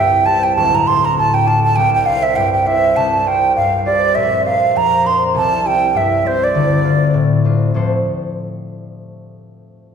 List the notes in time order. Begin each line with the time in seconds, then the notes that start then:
Already playing: C2 G2 A3 C4 D4 E4 G4 G5
0.26 C4 E4 G4 A5
0.44 G5
0.56 D1 D2 A5
0.75 A#5
0.87 D4 F4 A4 C6
1.05 A#5
1.17 A2 A5
1.34 G5
1.46 D4 F4 A4 A5
1.64 A5
1.76 C2 G5
1.94 G5
2.04 D4 E4 F5
2.10 C5
2.23 E5
2.36 G2 G5
2.53 G5
2.66 D4 E4 C5 E5
2.96 C2 A5
3.26 F4 G4 C5 G5
3.56 G2 F5
3.86 F4 G4 C5 D5
4.15 A#1 A#2 E5
4.45 D4 A#4 C5 F5
4.75 F2 A#5
5.04 D4 A#4 C5 C6
5.34 C2 C3 A5
5.65 C4 E4 G4 G5
5.95 G2 E5
6.25 C4 E4 G4 C5
6.44 D5
6.54 D2 D3
6.84 C4 D4 F4
7.14 A2
7.44 C4 D4 F4
7.74 D2 A2 F3 D4 A4 C5